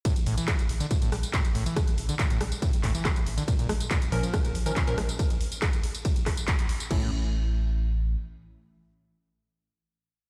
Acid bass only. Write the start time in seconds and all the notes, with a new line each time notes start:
0.05 A2
0.26 A2
0.38 E3
0.48 A2
0.80 D3
0.91 A2
1.02 A2
1.12 G3
1.34 A2
1.55 A2
1.66 E3
1.76 A2
2.09 D3
2.19 A2
2.30 A2
2.41 G3
2.62 A2
2.83 A2
2.95 E3
3.05 A2
3.38 D3
3.48 A#2
3.59 A#2
3.69 G#3
3.91 A#2
4.12 A#2
4.23 F3
4.33 A#2
4.66 D#3
4.76 A#2
4.87 A#2
4.98 G#3
6.91 A2